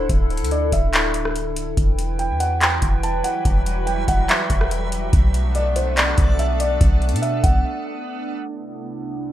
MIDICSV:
0, 0, Header, 1, 6, 480
1, 0, Start_track
1, 0, Tempo, 419580
1, 109, Time_signature, 4, 2, 24, 8
1, 10667, End_track
2, 0, Start_track
2, 0, Title_t, "Felt piano"
2, 0, Program_c, 0, 0
2, 592, Note_on_c, 0, 74, 84
2, 818, Note_off_c, 0, 74, 0
2, 835, Note_on_c, 0, 76, 85
2, 1986, Note_off_c, 0, 76, 0
2, 2505, Note_on_c, 0, 79, 80
2, 2735, Note_off_c, 0, 79, 0
2, 2748, Note_on_c, 0, 78, 87
2, 2976, Note_off_c, 0, 78, 0
2, 2987, Note_on_c, 0, 79, 82
2, 3439, Note_off_c, 0, 79, 0
2, 3471, Note_on_c, 0, 81, 101
2, 3698, Note_off_c, 0, 81, 0
2, 3709, Note_on_c, 0, 78, 85
2, 3937, Note_off_c, 0, 78, 0
2, 4420, Note_on_c, 0, 79, 81
2, 4652, Note_off_c, 0, 79, 0
2, 4672, Note_on_c, 0, 78, 98
2, 4898, Note_off_c, 0, 78, 0
2, 4915, Note_on_c, 0, 76, 80
2, 5363, Note_off_c, 0, 76, 0
2, 6354, Note_on_c, 0, 74, 88
2, 6580, Note_off_c, 0, 74, 0
2, 6591, Note_on_c, 0, 72, 78
2, 6818, Note_off_c, 0, 72, 0
2, 6828, Note_on_c, 0, 74, 84
2, 7279, Note_off_c, 0, 74, 0
2, 7313, Note_on_c, 0, 76, 77
2, 7539, Note_off_c, 0, 76, 0
2, 7554, Note_on_c, 0, 74, 87
2, 7779, Note_off_c, 0, 74, 0
2, 8261, Note_on_c, 0, 76, 85
2, 8492, Note_off_c, 0, 76, 0
2, 8505, Note_on_c, 0, 78, 83
2, 9661, Note_off_c, 0, 78, 0
2, 10667, End_track
3, 0, Start_track
3, 0, Title_t, "Synth texture"
3, 0, Program_c, 1, 99
3, 2029, Note_on_c, 1, 54, 81
3, 2029, Note_on_c, 1, 55, 85
3, 2029, Note_on_c, 1, 76, 100
3, 5830, Note_off_c, 1, 54, 0
3, 5830, Note_off_c, 1, 55, 0
3, 5830, Note_off_c, 1, 76, 0
3, 5867, Note_on_c, 1, 69, 80
3, 5867, Note_on_c, 1, 74, 95
3, 5868, Note_on_c, 1, 59, 91
3, 9669, Note_off_c, 1, 69, 0
3, 9669, Note_off_c, 1, 74, 0
3, 9670, Note_off_c, 1, 59, 0
3, 9709, Note_on_c, 1, 69, 79
3, 9709, Note_on_c, 1, 76, 93
3, 9710, Note_on_c, 1, 60, 83
3, 10667, Note_off_c, 1, 60, 0
3, 10667, Note_off_c, 1, 69, 0
3, 10667, Note_off_c, 1, 76, 0
3, 10667, End_track
4, 0, Start_track
4, 0, Title_t, "Ambient pad"
4, 0, Program_c, 2, 92
4, 0, Note_on_c, 2, 50, 79
4, 0, Note_on_c, 2, 62, 74
4, 0, Note_on_c, 2, 64, 74
4, 0, Note_on_c, 2, 69, 85
4, 1983, Note_off_c, 2, 62, 0
4, 1990, Note_off_c, 2, 50, 0
4, 1990, Note_off_c, 2, 64, 0
4, 1990, Note_off_c, 2, 69, 0
4, 2029, Note_on_c, 2, 52, 82
4, 2029, Note_on_c, 2, 64, 73
4, 2029, Note_on_c, 2, 71, 92
4, 2029, Note_on_c, 2, 79, 75
4, 5830, Note_off_c, 2, 52, 0
4, 5830, Note_off_c, 2, 64, 0
4, 5830, Note_off_c, 2, 71, 0
4, 5830, Note_off_c, 2, 79, 0
4, 5868, Note_on_c, 2, 57, 76
4, 5868, Note_on_c, 2, 59, 74
4, 5868, Note_on_c, 2, 62, 89
4, 9670, Note_off_c, 2, 57, 0
4, 9670, Note_off_c, 2, 59, 0
4, 9670, Note_off_c, 2, 62, 0
4, 9709, Note_on_c, 2, 36, 81
4, 9709, Note_on_c, 2, 48, 70
4, 9709, Note_on_c, 2, 57, 70
4, 9709, Note_on_c, 2, 62, 67
4, 9709, Note_on_c, 2, 64, 87
4, 10667, Note_off_c, 2, 36, 0
4, 10667, Note_off_c, 2, 48, 0
4, 10667, Note_off_c, 2, 57, 0
4, 10667, Note_off_c, 2, 62, 0
4, 10667, Note_off_c, 2, 64, 0
4, 10667, End_track
5, 0, Start_track
5, 0, Title_t, "808-style bass"
5, 0, Program_c, 3, 38
5, 108, Note_on_c, 3, 26, 113
5, 468, Note_on_c, 3, 38, 94
5, 485, Note_off_c, 3, 26, 0
5, 810, Note_off_c, 3, 38, 0
5, 827, Note_on_c, 3, 26, 100
5, 1982, Note_off_c, 3, 26, 0
5, 2028, Note_on_c, 3, 28, 113
5, 2628, Note_on_c, 3, 40, 97
5, 2645, Note_off_c, 3, 28, 0
5, 3198, Note_off_c, 3, 40, 0
5, 3228, Note_on_c, 3, 28, 103
5, 3689, Note_off_c, 3, 28, 0
5, 3948, Note_on_c, 3, 28, 118
5, 4639, Note_off_c, 3, 28, 0
5, 4668, Note_on_c, 3, 28, 107
5, 4898, Note_off_c, 3, 28, 0
5, 5148, Note_on_c, 3, 28, 96
5, 5839, Note_off_c, 3, 28, 0
5, 5868, Note_on_c, 3, 35, 119
5, 7023, Note_off_c, 3, 35, 0
5, 7068, Note_on_c, 3, 35, 99
5, 7759, Note_off_c, 3, 35, 0
5, 7788, Note_on_c, 3, 35, 113
5, 8149, Note_on_c, 3, 47, 99
5, 8166, Note_off_c, 3, 35, 0
5, 8491, Note_off_c, 3, 47, 0
5, 8507, Note_on_c, 3, 35, 106
5, 8738, Note_off_c, 3, 35, 0
5, 10667, End_track
6, 0, Start_track
6, 0, Title_t, "Drums"
6, 108, Note_on_c, 9, 36, 125
6, 108, Note_on_c, 9, 42, 74
6, 222, Note_off_c, 9, 36, 0
6, 223, Note_off_c, 9, 42, 0
6, 348, Note_on_c, 9, 42, 43
6, 428, Note_off_c, 9, 42, 0
6, 428, Note_on_c, 9, 42, 58
6, 508, Note_off_c, 9, 42, 0
6, 508, Note_on_c, 9, 42, 75
6, 587, Note_off_c, 9, 42, 0
6, 587, Note_on_c, 9, 42, 61
6, 701, Note_off_c, 9, 42, 0
6, 827, Note_on_c, 9, 36, 92
6, 828, Note_on_c, 9, 42, 81
6, 941, Note_off_c, 9, 36, 0
6, 943, Note_off_c, 9, 42, 0
6, 1068, Note_on_c, 9, 42, 67
6, 1075, Note_on_c, 9, 39, 121
6, 1182, Note_off_c, 9, 42, 0
6, 1190, Note_off_c, 9, 39, 0
6, 1306, Note_on_c, 9, 42, 73
6, 1420, Note_off_c, 9, 42, 0
6, 1434, Note_on_c, 9, 37, 87
6, 1548, Note_off_c, 9, 37, 0
6, 1551, Note_on_c, 9, 42, 70
6, 1665, Note_off_c, 9, 42, 0
6, 1790, Note_on_c, 9, 42, 88
6, 1904, Note_off_c, 9, 42, 0
6, 2028, Note_on_c, 9, 36, 124
6, 2029, Note_on_c, 9, 42, 74
6, 2142, Note_off_c, 9, 36, 0
6, 2143, Note_off_c, 9, 42, 0
6, 2272, Note_on_c, 9, 42, 74
6, 2386, Note_off_c, 9, 42, 0
6, 2507, Note_on_c, 9, 42, 60
6, 2621, Note_off_c, 9, 42, 0
6, 2748, Note_on_c, 9, 42, 79
6, 2863, Note_off_c, 9, 42, 0
6, 2988, Note_on_c, 9, 42, 66
6, 2996, Note_on_c, 9, 39, 121
6, 3103, Note_off_c, 9, 42, 0
6, 3110, Note_off_c, 9, 39, 0
6, 3226, Note_on_c, 9, 42, 68
6, 3228, Note_on_c, 9, 36, 93
6, 3340, Note_off_c, 9, 42, 0
6, 3342, Note_off_c, 9, 36, 0
6, 3471, Note_on_c, 9, 42, 69
6, 3585, Note_off_c, 9, 42, 0
6, 3710, Note_on_c, 9, 42, 87
6, 3825, Note_off_c, 9, 42, 0
6, 3948, Note_on_c, 9, 36, 120
6, 3949, Note_on_c, 9, 42, 72
6, 4063, Note_off_c, 9, 36, 0
6, 4063, Note_off_c, 9, 42, 0
6, 4192, Note_on_c, 9, 42, 68
6, 4306, Note_off_c, 9, 42, 0
6, 4428, Note_on_c, 9, 42, 61
6, 4542, Note_off_c, 9, 42, 0
6, 4667, Note_on_c, 9, 36, 92
6, 4668, Note_on_c, 9, 42, 78
6, 4782, Note_off_c, 9, 36, 0
6, 4783, Note_off_c, 9, 42, 0
6, 4908, Note_on_c, 9, 42, 68
6, 4916, Note_on_c, 9, 39, 114
6, 5023, Note_off_c, 9, 42, 0
6, 5030, Note_off_c, 9, 39, 0
6, 5147, Note_on_c, 9, 42, 72
6, 5148, Note_on_c, 9, 36, 94
6, 5261, Note_off_c, 9, 42, 0
6, 5262, Note_off_c, 9, 36, 0
6, 5274, Note_on_c, 9, 37, 89
6, 5389, Note_off_c, 9, 37, 0
6, 5391, Note_on_c, 9, 42, 73
6, 5506, Note_off_c, 9, 42, 0
6, 5630, Note_on_c, 9, 42, 87
6, 5744, Note_off_c, 9, 42, 0
6, 5868, Note_on_c, 9, 36, 122
6, 5869, Note_on_c, 9, 42, 74
6, 5983, Note_off_c, 9, 36, 0
6, 5983, Note_off_c, 9, 42, 0
6, 6111, Note_on_c, 9, 42, 69
6, 6225, Note_off_c, 9, 42, 0
6, 6347, Note_on_c, 9, 42, 58
6, 6461, Note_off_c, 9, 42, 0
6, 6588, Note_on_c, 9, 42, 81
6, 6702, Note_off_c, 9, 42, 0
6, 6828, Note_on_c, 9, 42, 69
6, 6835, Note_on_c, 9, 39, 110
6, 6942, Note_off_c, 9, 42, 0
6, 6950, Note_off_c, 9, 39, 0
6, 7066, Note_on_c, 9, 42, 72
6, 7068, Note_on_c, 9, 36, 91
6, 7180, Note_off_c, 9, 42, 0
6, 7182, Note_off_c, 9, 36, 0
6, 7311, Note_on_c, 9, 42, 71
6, 7426, Note_off_c, 9, 42, 0
6, 7550, Note_on_c, 9, 42, 87
6, 7664, Note_off_c, 9, 42, 0
6, 7788, Note_on_c, 9, 36, 127
6, 7789, Note_on_c, 9, 42, 73
6, 7903, Note_off_c, 9, 36, 0
6, 7903, Note_off_c, 9, 42, 0
6, 8029, Note_on_c, 9, 42, 42
6, 8108, Note_off_c, 9, 42, 0
6, 8108, Note_on_c, 9, 42, 57
6, 8188, Note_off_c, 9, 42, 0
6, 8188, Note_on_c, 9, 42, 70
6, 8267, Note_off_c, 9, 42, 0
6, 8267, Note_on_c, 9, 42, 61
6, 8382, Note_off_c, 9, 42, 0
6, 8507, Note_on_c, 9, 36, 91
6, 8508, Note_on_c, 9, 42, 78
6, 8622, Note_off_c, 9, 36, 0
6, 8623, Note_off_c, 9, 42, 0
6, 10667, End_track
0, 0, End_of_file